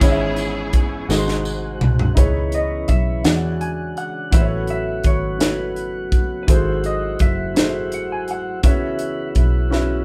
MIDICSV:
0, 0, Header, 1, 7, 480
1, 0, Start_track
1, 0, Key_signature, 4, "minor"
1, 0, Tempo, 719424
1, 7, Time_signature, 6, 3, 24, 8
1, 6703, End_track
2, 0, Start_track
2, 0, Title_t, "Electric slide guitar"
2, 0, Program_c, 0, 29
2, 1452, Note_on_c, 0, 71, 78
2, 1697, Note_off_c, 0, 71, 0
2, 1699, Note_on_c, 0, 75, 79
2, 1921, Note_off_c, 0, 75, 0
2, 1924, Note_on_c, 0, 76, 83
2, 2165, Note_off_c, 0, 76, 0
2, 2168, Note_on_c, 0, 78, 89
2, 2233, Note_off_c, 0, 78, 0
2, 2408, Note_on_c, 0, 80, 74
2, 2651, Note_off_c, 0, 80, 0
2, 2653, Note_on_c, 0, 78, 92
2, 2890, Note_off_c, 0, 78, 0
2, 2893, Note_on_c, 0, 76, 79
2, 2957, Note_off_c, 0, 76, 0
2, 3139, Note_on_c, 0, 76, 81
2, 3378, Note_on_c, 0, 73, 80
2, 3380, Note_off_c, 0, 76, 0
2, 3597, Note_off_c, 0, 73, 0
2, 3617, Note_on_c, 0, 71, 76
2, 4126, Note_off_c, 0, 71, 0
2, 4290, Note_on_c, 0, 71, 70
2, 4332, Note_off_c, 0, 71, 0
2, 4339, Note_on_c, 0, 72, 82
2, 4557, Note_off_c, 0, 72, 0
2, 4577, Note_on_c, 0, 75, 79
2, 4814, Note_off_c, 0, 75, 0
2, 4816, Note_on_c, 0, 76, 93
2, 5296, Note_off_c, 0, 76, 0
2, 5298, Note_on_c, 0, 78, 71
2, 5416, Note_off_c, 0, 78, 0
2, 5420, Note_on_c, 0, 80, 86
2, 5537, Note_off_c, 0, 80, 0
2, 5544, Note_on_c, 0, 78, 81
2, 5774, Note_off_c, 0, 78, 0
2, 5777, Note_on_c, 0, 76, 78
2, 6703, Note_off_c, 0, 76, 0
2, 6703, End_track
3, 0, Start_track
3, 0, Title_t, "Grand piano"
3, 0, Program_c, 1, 0
3, 0, Control_c, 1, 64, 127
3, 3, Note_on_c, 1, 61, 85
3, 5, Note_on_c, 1, 64, 82
3, 13, Note_on_c, 1, 44, 67
3, 14, Note_on_c, 1, 68, 84
3, 16, Control_c, 1, 64, 0
3, 19, Note_on_c, 1, 73, 72
3, 23, Note_on_c, 1, 75, 74
3, 59, Note_off_c, 1, 75, 0
3, 68, Note_on_c, 1, 76, 83
3, 117, Control_c, 1, 64, 127
3, 531, Note_off_c, 1, 61, 0
3, 532, Note_off_c, 1, 64, 0
3, 537, Note_off_c, 1, 68, 0
3, 539, Note_off_c, 1, 73, 0
3, 563, Note_off_c, 1, 76, 0
3, 703, Note_off_c, 1, 44, 0
3, 724, Note_on_c, 1, 66, 70
3, 730, Note_on_c, 1, 44, 74
3, 730, Note_on_c, 1, 68, 67
3, 736, Control_c, 1, 64, 0
3, 738, Note_on_c, 1, 69, 50
3, 743, Note_on_c, 1, 75, 79
3, 776, Note_off_c, 1, 69, 0
3, 782, Note_on_c, 1, 84, 64
3, 868, Control_c, 1, 64, 127
3, 1252, Note_off_c, 1, 66, 0
3, 1254, Note_off_c, 1, 68, 0
3, 1261, Note_off_c, 1, 75, 0
3, 1280, Note_off_c, 1, 84, 0
3, 1422, Note_off_c, 1, 44, 0
3, 1432, Note_on_c, 1, 63, 67
3, 1439, Note_on_c, 1, 64, 56
3, 1444, Note_on_c, 1, 68, 57
3, 1447, Note_on_c, 1, 49, 49
3, 1451, Note_on_c, 1, 71, 59
3, 1454, Note_on_c, 1, 73, 75
3, 1458, Control_c, 1, 64, 0
3, 1558, Control_c, 1, 64, 127
3, 1966, Note_off_c, 1, 63, 0
3, 1969, Note_off_c, 1, 64, 0
3, 1972, Note_off_c, 1, 68, 0
3, 1975, Note_off_c, 1, 71, 0
3, 1977, Note_off_c, 1, 73, 0
3, 2141, Note_off_c, 1, 49, 0
3, 2162, Note_on_c, 1, 64, 51
3, 2166, Note_on_c, 1, 66, 49
3, 2172, Note_on_c, 1, 52, 52
3, 2173, Note_on_c, 1, 68, 53
3, 2175, Control_c, 1, 64, 0
3, 2178, Note_on_c, 1, 73, 50
3, 2183, Note_on_c, 1, 74, 60
3, 2310, Control_c, 1, 64, 127
3, 2691, Note_off_c, 1, 64, 0
3, 2692, Note_off_c, 1, 66, 0
3, 2696, Note_off_c, 1, 68, 0
3, 2699, Note_off_c, 1, 73, 0
3, 2701, Note_off_c, 1, 74, 0
3, 2863, Note_off_c, 1, 52, 0
3, 2877, Note_on_c, 1, 64, 64
3, 2886, Note_on_c, 1, 66, 61
3, 2889, Note_on_c, 1, 57, 59
3, 2890, Note_on_c, 1, 69, 66
3, 2897, Control_c, 1, 64, 0
3, 2897, Note_on_c, 1, 71, 58
3, 2901, Note_on_c, 1, 72, 64
3, 2938, Note_off_c, 1, 72, 0
3, 2946, Note_on_c, 1, 73, 69
3, 3030, Control_c, 1, 64, 127
3, 3408, Note_off_c, 1, 64, 0
3, 3413, Note_off_c, 1, 66, 0
3, 3414, Note_off_c, 1, 69, 0
3, 3418, Note_off_c, 1, 71, 0
3, 3443, Note_off_c, 1, 73, 0
3, 3582, Note_off_c, 1, 57, 0
3, 3594, Note_on_c, 1, 64, 54
3, 3599, Note_on_c, 1, 66, 53
3, 3604, Note_on_c, 1, 69, 53
3, 3610, Note_on_c, 1, 71, 50
3, 3616, Note_on_c, 1, 73, 59
3, 4127, Note_off_c, 1, 64, 0
3, 4129, Note_off_c, 1, 66, 0
3, 4132, Note_off_c, 1, 69, 0
3, 4135, Note_off_c, 1, 71, 0
3, 4138, Note_off_c, 1, 73, 0
3, 4317, Note_on_c, 1, 64, 64
3, 4322, Note_on_c, 1, 66, 57
3, 4330, Note_on_c, 1, 68, 66
3, 4331, Note_on_c, 1, 44, 56
3, 4335, Control_c, 1, 64, 0
3, 4335, Note_on_c, 1, 69, 62
3, 4339, Note_on_c, 1, 72, 72
3, 4464, Control_c, 1, 64, 127
3, 4848, Note_off_c, 1, 64, 0
3, 4851, Note_off_c, 1, 66, 0
3, 4855, Note_off_c, 1, 68, 0
3, 4857, Note_off_c, 1, 69, 0
3, 4859, Note_off_c, 1, 72, 0
3, 5023, Note_off_c, 1, 44, 0
3, 5033, Note_on_c, 1, 64, 57
3, 5038, Note_on_c, 1, 66, 52
3, 5046, Note_on_c, 1, 68, 53
3, 5049, Note_on_c, 1, 69, 49
3, 5058, Note_on_c, 1, 72, 70
3, 5566, Note_off_c, 1, 64, 0
3, 5569, Note_off_c, 1, 66, 0
3, 5572, Note_off_c, 1, 68, 0
3, 5574, Note_off_c, 1, 69, 0
3, 5578, Note_off_c, 1, 72, 0
3, 5758, Note_on_c, 1, 61, 67
3, 5766, Note_on_c, 1, 64, 64
3, 5768, Note_on_c, 1, 66, 61
3, 5769, Note_on_c, 1, 49, 54
3, 5774, Note_on_c, 1, 71, 59
3, 5776, Control_c, 1, 64, 0
3, 5782, Note_on_c, 1, 73, 73
3, 5891, Control_c, 1, 64, 127
3, 6288, Note_off_c, 1, 61, 0
3, 6292, Note_off_c, 1, 64, 0
3, 6293, Note_off_c, 1, 66, 0
3, 6296, Note_off_c, 1, 71, 0
3, 6300, Note_off_c, 1, 73, 0
3, 6461, Note_off_c, 1, 49, 0
3, 6473, Note_on_c, 1, 61, 71
3, 6475, Note_on_c, 1, 64, 59
3, 6482, Note_on_c, 1, 66, 63
3, 6489, Note_on_c, 1, 71, 60
3, 6494, Note_on_c, 1, 76, 74
3, 6703, Note_off_c, 1, 61, 0
3, 6703, Note_off_c, 1, 64, 0
3, 6703, Note_off_c, 1, 66, 0
3, 6703, Note_off_c, 1, 71, 0
3, 6703, Note_off_c, 1, 76, 0
3, 6703, End_track
4, 0, Start_track
4, 0, Title_t, "String section"
4, 0, Program_c, 2, 48
4, 0, Note_on_c, 2, 59, 70
4, 0, Note_on_c, 2, 64, 70
4, 0, Note_on_c, 2, 68, 84
4, 949, Note_off_c, 2, 64, 0
4, 950, Note_off_c, 2, 59, 0
4, 978, Note_off_c, 2, 68, 0
4, 6703, End_track
5, 0, Start_track
5, 0, Title_t, "Tonewheel organ"
5, 0, Program_c, 3, 16
5, 0, Note_on_c, 3, 52, 63
5, 0, Note_on_c, 3, 68, 71
5, 12, Note_on_c, 3, 56, 60
5, 12, Note_on_c, 3, 61, 59
5, 706, Note_off_c, 3, 68, 0
5, 708, Note_off_c, 3, 52, 0
5, 722, Note_off_c, 3, 61, 0
5, 727, Note_on_c, 3, 66, 67
5, 728, Note_on_c, 3, 48, 60
5, 1435, Note_off_c, 3, 56, 0
5, 1440, Note_off_c, 3, 66, 0
5, 1441, Note_off_c, 3, 48, 0
5, 1451, Note_on_c, 3, 52, 55
5, 1452, Note_on_c, 3, 49, 57
5, 1452, Note_on_c, 3, 61, 67
5, 1453, Note_on_c, 3, 59, 58
5, 2162, Note_off_c, 3, 52, 0
5, 2163, Note_off_c, 3, 59, 0
5, 2163, Note_off_c, 3, 61, 0
5, 2172, Note_on_c, 3, 50, 58
5, 2172, Note_on_c, 3, 56, 51
5, 2172, Note_on_c, 3, 66, 65
5, 2878, Note_off_c, 3, 66, 0
5, 2882, Note_on_c, 3, 54, 63
5, 2883, Note_off_c, 3, 50, 0
5, 2883, Note_off_c, 3, 56, 0
5, 2886, Note_on_c, 3, 59, 56
5, 2886, Note_on_c, 3, 66, 60
5, 4304, Note_off_c, 3, 49, 0
5, 4313, Note_off_c, 3, 59, 0
5, 4322, Note_on_c, 3, 64, 54
5, 4326, Note_on_c, 3, 60, 52
5, 5738, Note_off_c, 3, 54, 0
5, 5740, Note_off_c, 3, 66, 0
5, 5750, Note_off_c, 3, 64, 0
5, 5752, Note_off_c, 3, 60, 0
5, 5758, Note_on_c, 3, 52, 60
5, 5760, Note_on_c, 3, 59, 55
5, 5763, Note_on_c, 3, 64, 51
5, 5764, Note_on_c, 3, 66, 63
5, 6703, Note_off_c, 3, 52, 0
5, 6703, Note_off_c, 3, 59, 0
5, 6703, Note_off_c, 3, 64, 0
5, 6703, Note_off_c, 3, 66, 0
5, 6703, End_track
6, 0, Start_track
6, 0, Title_t, "Fingered electric bass"
6, 0, Program_c, 4, 33
6, 8, Note_on_c, 4, 32, 83
6, 491, Note_off_c, 4, 32, 0
6, 491, Note_on_c, 4, 30, 78
6, 710, Note_off_c, 4, 30, 0
6, 727, Note_on_c, 4, 32, 81
6, 1181, Note_off_c, 4, 32, 0
6, 1208, Note_on_c, 4, 36, 71
6, 1428, Note_off_c, 4, 36, 0
6, 1447, Note_on_c, 4, 37, 78
6, 1901, Note_off_c, 4, 37, 0
6, 1927, Note_on_c, 4, 35, 70
6, 2148, Note_off_c, 4, 35, 0
6, 2165, Note_on_c, 4, 40, 72
6, 2620, Note_off_c, 4, 40, 0
6, 2886, Note_on_c, 4, 33, 83
6, 3340, Note_off_c, 4, 33, 0
6, 3365, Note_on_c, 4, 32, 80
6, 4300, Note_off_c, 4, 32, 0
6, 4324, Note_on_c, 4, 32, 94
6, 4779, Note_off_c, 4, 32, 0
6, 4807, Note_on_c, 4, 30, 67
6, 5763, Note_off_c, 4, 30, 0
6, 5763, Note_on_c, 4, 37, 87
6, 6218, Note_off_c, 4, 37, 0
6, 6243, Note_on_c, 4, 35, 76
6, 6703, Note_off_c, 4, 35, 0
6, 6703, End_track
7, 0, Start_track
7, 0, Title_t, "Drums"
7, 9, Note_on_c, 9, 36, 89
7, 9, Note_on_c, 9, 42, 85
7, 17, Note_on_c, 9, 54, 50
7, 76, Note_off_c, 9, 36, 0
7, 76, Note_off_c, 9, 42, 0
7, 83, Note_off_c, 9, 54, 0
7, 243, Note_on_c, 9, 42, 42
7, 255, Note_on_c, 9, 54, 50
7, 310, Note_off_c, 9, 42, 0
7, 321, Note_off_c, 9, 54, 0
7, 487, Note_on_c, 9, 42, 50
7, 490, Note_on_c, 9, 36, 75
7, 553, Note_off_c, 9, 42, 0
7, 557, Note_off_c, 9, 36, 0
7, 733, Note_on_c, 9, 54, 72
7, 734, Note_on_c, 9, 38, 60
7, 799, Note_off_c, 9, 54, 0
7, 801, Note_off_c, 9, 38, 0
7, 854, Note_on_c, 9, 38, 52
7, 921, Note_off_c, 9, 38, 0
7, 969, Note_on_c, 9, 54, 58
7, 1036, Note_off_c, 9, 54, 0
7, 1209, Note_on_c, 9, 45, 92
7, 1276, Note_off_c, 9, 45, 0
7, 1330, Note_on_c, 9, 43, 83
7, 1397, Note_off_c, 9, 43, 0
7, 1447, Note_on_c, 9, 36, 84
7, 1447, Note_on_c, 9, 42, 82
7, 1513, Note_off_c, 9, 42, 0
7, 1514, Note_off_c, 9, 36, 0
7, 1682, Note_on_c, 9, 42, 46
7, 1748, Note_off_c, 9, 42, 0
7, 1921, Note_on_c, 9, 42, 46
7, 1927, Note_on_c, 9, 36, 69
7, 1988, Note_off_c, 9, 42, 0
7, 1994, Note_off_c, 9, 36, 0
7, 2165, Note_on_c, 9, 42, 74
7, 2169, Note_on_c, 9, 38, 101
7, 2232, Note_off_c, 9, 42, 0
7, 2236, Note_off_c, 9, 38, 0
7, 2408, Note_on_c, 9, 42, 39
7, 2475, Note_off_c, 9, 42, 0
7, 2649, Note_on_c, 9, 42, 36
7, 2716, Note_off_c, 9, 42, 0
7, 2885, Note_on_c, 9, 42, 81
7, 2886, Note_on_c, 9, 36, 93
7, 2952, Note_off_c, 9, 36, 0
7, 2952, Note_off_c, 9, 42, 0
7, 3119, Note_on_c, 9, 42, 42
7, 3185, Note_off_c, 9, 42, 0
7, 3360, Note_on_c, 9, 42, 50
7, 3365, Note_on_c, 9, 36, 73
7, 3427, Note_off_c, 9, 42, 0
7, 3432, Note_off_c, 9, 36, 0
7, 3606, Note_on_c, 9, 42, 87
7, 3610, Note_on_c, 9, 38, 93
7, 3673, Note_off_c, 9, 42, 0
7, 3677, Note_off_c, 9, 38, 0
7, 3845, Note_on_c, 9, 42, 37
7, 3912, Note_off_c, 9, 42, 0
7, 4084, Note_on_c, 9, 36, 71
7, 4084, Note_on_c, 9, 42, 35
7, 4150, Note_off_c, 9, 36, 0
7, 4151, Note_off_c, 9, 42, 0
7, 4324, Note_on_c, 9, 42, 84
7, 4325, Note_on_c, 9, 36, 87
7, 4391, Note_off_c, 9, 36, 0
7, 4391, Note_off_c, 9, 42, 0
7, 4562, Note_on_c, 9, 42, 42
7, 4629, Note_off_c, 9, 42, 0
7, 4799, Note_on_c, 9, 42, 50
7, 4805, Note_on_c, 9, 36, 75
7, 4865, Note_off_c, 9, 42, 0
7, 4872, Note_off_c, 9, 36, 0
7, 5046, Note_on_c, 9, 42, 83
7, 5050, Note_on_c, 9, 38, 100
7, 5113, Note_off_c, 9, 42, 0
7, 5117, Note_off_c, 9, 38, 0
7, 5283, Note_on_c, 9, 42, 43
7, 5350, Note_off_c, 9, 42, 0
7, 5523, Note_on_c, 9, 42, 39
7, 5589, Note_off_c, 9, 42, 0
7, 5760, Note_on_c, 9, 42, 77
7, 5762, Note_on_c, 9, 36, 100
7, 5827, Note_off_c, 9, 42, 0
7, 5829, Note_off_c, 9, 36, 0
7, 5996, Note_on_c, 9, 42, 47
7, 6063, Note_off_c, 9, 42, 0
7, 6238, Note_on_c, 9, 42, 45
7, 6243, Note_on_c, 9, 36, 70
7, 6305, Note_off_c, 9, 42, 0
7, 6310, Note_off_c, 9, 36, 0
7, 6488, Note_on_c, 9, 38, 51
7, 6555, Note_off_c, 9, 38, 0
7, 6703, End_track
0, 0, End_of_file